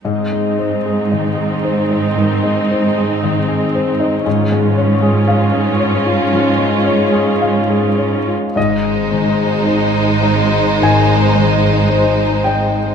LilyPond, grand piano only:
\new Staff \with { instrumentName = "Grand piano" } { \time 4/4 \key aes \major \tempo 4 = 56 << { r1 | r1 | ees''2 aes''4. g''8 | } \\ { aes,16 aes16 c''16 aes'16 ees''16 aes'16 c''16 ees'16 ees16 aes16 c''16 aes'16 ees''16 aes'16 c''16 ees'16 | aes,16 aes16 des''16 aes'16 f''16 aes'16 des''16 f'16 f16 aes16 des''16 aes'16 f''16 aes'16 des''16 f'16 | aes,8 aes8 c''8 ees'8 ees8 aes8 c''8 ees'8 | } >> }